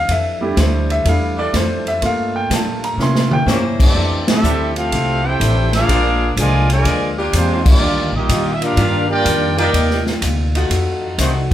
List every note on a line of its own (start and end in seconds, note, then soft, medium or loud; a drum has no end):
0.08 0.55 F2 medium
0.08 0.43 F3 soft
0.08 0.44 D4 medium
0.08 0.44 E4 medium
0.08 0.44 A4 medium
0.08 0.42 E5 medium
0.08 kick soft
0.08 ride medium
0.41 1.02 G3 soft
0.41 1.02 A3 soft
0.41 1.02 D4 soft
0.41 1.02 E4 medium
0.41 0.57 G4 medium
0.57 1.04 D2 loud
0.57 0.92 F3 medium
0.57 0.92 D4 medium
0.57 0.92 E4 medium
0.57 0.92 A4 medium
0.57 0.90 C5 medium
0.57 kick soft
0.57 snare medium
0.57 hi-hat pedal medium
0.57 ride medium
0.90 1.06 E5 medium
0.90 ride medium
1.05 1.52 E2 medium
1.05 1.40 F3 soft
1.05 1.35 G3 soft
1.05 1.35 A3 soft
1.05 1.35 D4 soft
1.05 1.40 D4 soft
1.05 1.35 E4 soft
1.05 1.40 E4 medium
1.05 1.41 A4 medium
1.05 1.39 F5 medium
1.05 kick soft
1.05 ride medium
1.37 1.98 G3 medium
1.37 1.98 D4 medium
1.37 1.98 E4 medium
1.37 1.98 A4 loud
1.37 1.54 D5 medium
1.53 2.00 F2 medium
1.53 1.88 F3 medium
1.53 1.88 D4 medium
1.53 1.88 E4 medium
1.53 1.89 A4 medium
1.53 1.87 C5 medium
1.53 kick soft
1.53 snare medium
1.53 hi-hat pedal medium
1.53 ride medium
1.87 2.02 E5 medium
1.87 ride medium
2.02 2.49 G2 medium
2.02 2.36 G3 medium
2.02 2.94 A3 medium
2.02 2.95 A#3 soft
2.02 2.37 D4 medium
2.02 2.95 F4 medium
2.02 2.37 F4 medium
2.02 2.38 A#4 medium
2.02 2.35 F5 medium
2.02 kick soft
2.02 ride medium
2.36 2.50 G5 medium
2.50 2.97 A#2 medium
2.50 2.85 G3 medium
2.50 2.85 D4 medium
2.50 2.85 F4 medium
2.50 2.85 A#4 medium
2.50 2.84 A5 medium
2.50 kick soft
2.50 snare medium
2.50 hi-hat pedal medium
2.50 ride medium
2.84 2.99 A#5 medium
2.84 ride soft
2.98 3.45 C3 medium
2.98 3.33 C3 soft
2.98 3.75 A#3 soft
2.98 3.33 A#3 soft
2.98 3.76 C#4 soft
2.98 3.33 C#4 medium
2.98 3.76 E4 medium
2.98 3.34 E4 medium
2.98 snare medium
3.02 3.32 C6 medium
3.15 snare medium
3.31 3.42 G5 loud
3.31 mid tom medium
3.46 3.93 G2 loud
3.46 3.81 C3 medium
3.46 3.62 G3 medium
3.46 3.95 A#3 medium
3.46 3.62 A#3 medium
3.46 3.82 A#3 medium
3.46 3.64 A#3 medium
3.46 3.95 C#4 medium
3.46 3.62 C#4 medium
3.46 3.82 C#4 medium
3.46 3.95 E4 medium
3.46 3.82 E4 medium
3.46 3.64 E4 medium
3.46 3.64 G4 medium
3.46 3.95 C5 loud
3.46 3.64 C#5 medium
3.46 snare medium
3.46 hi-hat pedal medium
3.79 4.24 E3 medium
3.79 4.24 A3 medium
3.79 4.25 C4 medium
3.79 4.24 D4 medium
3.79 4.25 G4 medium
3.79 4.26 A4 medium
3.79 4.25 D5 loud
3.79 kick medium
3.79 crash medium
3.95 4.42 F2 medium
3.95 4.29 F3 medium
3.95 4.30 A3 medium
3.95 4.30 D4 medium
3.95 4.30 E4 medium
3.95 kick soft
4.27 4.72 A3 medium
4.27 4.72 C4 medium
4.27 4.73 C4 medium
4.27 4.72 E4 medium
4.27 4.73 G4 medium
4.27 4.73 A4 medium
4.27 4.73 E5 loud
4.27 snare medium
4.27 ride medium
4.43 4.90 D2 loud
4.43 4.78 F3 medium
4.43 4.66 G3 medium
4.43 4.78 A3 medium
4.43 4.78 D4 medium
4.43 4.66 D4 medium
4.43 4.66 E4 medium
4.43 4.78 E4 medium
4.43 4.66 A4 medium
4.43 hi-hat pedal medium
4.76 5.24 A3 medium
4.76 5.23 C4 medium
4.76 5.25 C4 medium
4.76 5.24 F4 medium
4.76 5.25 G4 medium
4.76 5.25 A4 medium
4.76 5.25 F5 medium
4.76 ride medium
4.92 5.38 C2 medium
4.92 5.26 F3 soft
4.92 5.26 A3 medium
4.92 5.27 D4 soft
4.92 5.27 E4 medium
4.92 kick soft
4.92 ride medium
5.24 5.72 C4 medium
5.24 5.72 E4 medium
5.24 5.73 E4 medium
5.24 5.72 G4 medium
5.24 5.74 A4 medium
5.24 5.73 C5 medium
5.24 5.73 G5 loud
5.40 5.87 A1 loud
5.40 5.74 F3 medium
5.40 5.75 A3 medium
5.40 5.75 D4 medium
5.40 5.75 E4 medium
5.40 kick soft
5.40 hi-hat pedal medium
5.40 ride medium
5.73 6.32 G#3 medium
5.73 6.32 D4 medium
5.73 6.34 D4 loud
5.73 6.32 F4 loud
5.73 6.34 G#4 loud
5.73 6.34 A#4 medium
5.73 6.34 F5 loud
5.73 snare soft
5.73 ride medium
5.88 6.35 A#1 medium
5.88 6.23 A#2 medium
5.88 6.10 F3 medium
5.88 6.23 G#3 medium
5.88 6.11 A#3 medium
5.88 6.10 D4 medium
5.88 6.23 D4 medium
5.88 6.23 F4 medium
5.88 6.11 G#4 loud
5.88 kick soft
5.88 ride medium
6.37 6.83 C2 loud
6.37 6.71 A#2 medium
6.37 6.67 D3 loud
6.37 6.67 F3 loud
6.37 6.67 G#3 medium
6.37 6.71 G#3 medium
6.37 6.71 D4 medium
6.37 6.71 F4 medium
6.37 6.69 F4 medium
6.37 6.68 D5 medium
6.37 kick soft
6.37 hi-hat pedal medium
6.37 ride medium
6.41 6.69 A#4 medium
6.41 6.69 G#5 loud
6.70 7.14 D3 medium
6.70 7.14 F3 medium
6.70 7.14 G#3 medium
6.70 7.15 F4 medium
6.70 7.15 A#4 medium
6.70 7.16 D5 medium
6.70 7.15 G#5 loud
6.70 ride medium
6.85 7.31 D2 medium
6.85 7.19 A#2 soft
6.85 7.19 G#3 medium
6.85 7.20 D4 soft
6.85 7.20 F4 medium
6.85 kick soft
6.85 ride medium
7.18 7.78 A#3 medium
7.18 7.78 D4 medium
7.18 7.78 F4 loud
7.18 7.78 G4 loud
7.33 7.79 E2 loud
7.33 7.67 A#2 medium
7.33 7.68 G#3 medium
7.33 7.65 G#3 medium
7.33 7.64 C4 medium
7.33 7.68 D4 medium
7.33 7.65 D4 medium
7.33 7.68 F4 medium
7.33 7.65 F4 medium
7.33 7.65 C5 medium
7.33 kick soft
7.33 hi-hat pedal medium
7.33 ride medium
7.66 8.11 G3 medium
7.66 8.11 A#3 medium
7.66 8.12 A#3 medium
7.66 8.11 D4 medium
7.66 8.12 F4 medium
7.66 8.12 G4 medium
7.66 8.12 D5 loud
7.66 kick loud
7.66 crash loud
7.80 7.96 D#2 medium
7.80 8.16 D#3 medium
7.80 8.16 G3 medium
7.80 8.16 D4 medium
7.84 8.17 F4 medium
7.96 8.12 D2 medium
8.12 8.28 A#1 medium
8.12 8.52 G3 medium
8.12 8.52 A#3 medium
8.12 8.54 A#3 medium
8.12 8.52 D#4 medium
8.12 8.53 D#5 loud
8.16 8.54 F4 medium
8.16 8.54 G4 medium
8.29 8.76 A#2 loud
8.29 8.64 D#3 medium
8.29 8.64 G3 medium
8.29 8.64 D4 medium
8.29 8.65 F4 medium
8.29 kick soft
8.29 hi-hat pedal medium
8.29 ride medium
8.54 8.63 E5 medium
8.61 9.08 A#3 loud
8.61 9.08 D4 loud
8.61 9.11 D4 medium
8.61 9.10 F4 medium
8.61 9.11 G4 medium
8.61 9.10 A#4 medium
8.61 9.11 F5 loud
8.61 ride medium
8.76 9.24 G2 medium
8.76 8.99 D#3 medium
8.76 9.11 D#3 medium
8.76 8.99 G3 medium
8.76 9.12 G3 medium
8.76 8.99 D4 medium
8.76 9.12 D4 medium
8.76 8.99 F4 loud
8.76 9.13 F4 medium
8.76 kick soft
8.76 ride medium
9.09 9.54 A#3 loud
9.09 9.54 D4 loud
9.09 9.55 F4 loud
9.09 9.54 G4 loud
9.09 9.55 A#4 medium
9.09 9.55 D5 loud
9.09 9.56 G5 loud
9.25 9.72 F2 loud
9.25 9.60 D#3 medium
9.25 9.60 G3 medium
9.25 9.60 D4 medium
9.25 9.60 F4 medium
9.25 kick soft
9.25 hi-hat pedal medium
9.25 ride medium
9.57 9.68 D#3 medium
9.57 9.68 A#3 medium
9.57 10.03 A#3 medium
9.57 9.68 D4 medium
9.57 10.03 D#4 medium
9.57 10.04 D#4 medium
9.57 9.69 F4 loud
9.57 10.03 G4 medium
9.57 10.04 A#4 medium
9.57 10.03 D5 medium
9.57 10.04 G5 loud
9.57 ride medium
9.73 10.20 D#2 medium
9.73 10.08 C3 medium
9.73 10.08 A#3 medium
9.73 10.09 D#4 medium
9.73 10.09 F4 medium
9.73 kick soft
9.73 ride medium
9.90 snare soft
10.06 snare medium
10.22 10.69 D2 loud
10.22 10.56 C3 medium
10.22 10.57 A#3 medium
10.22 10.57 D#4 medium
10.22 10.57 F4 medium
10.22 kick soft
10.22 hi-hat pedal medium
10.22 ride medium
10.55 11.16 A3 medium
10.55 11.16 D#4 medium
10.55 11.16 F4 medium
10.55 11.16 F#4 loud
10.55 ride medium
10.70 11.17 F2 medium
10.70 11.04 F3 medium
10.70 11.05 A3 medium
10.70 11.05 D#4 medium
10.70 11.05 F#4 medium
10.70 kick soft
10.70 ride medium
11.18 11.54 C2 medium
11.18 11.33 D#3 medium
11.18 11.53 F3 medium
11.18 11.41 F3 medium
11.18 11.33 A3 medium
11.18 11.53 A3 medium
11.18 11.41 A3 medium
11.18 11.34 A3 medium
11.18 11.33 C4 medium
11.18 11.41 D#4 medium
11.18 11.34 D#4 medium
11.18 11.53 D#4 medium
11.18 11.41 F#4 medium
11.18 11.35 F#4 medium
11.18 11.54 F#4 medium
11.18 11.34 C5 medium
11.18 kick soft
11.18 hi-hat pedal medium
11.18 ride medium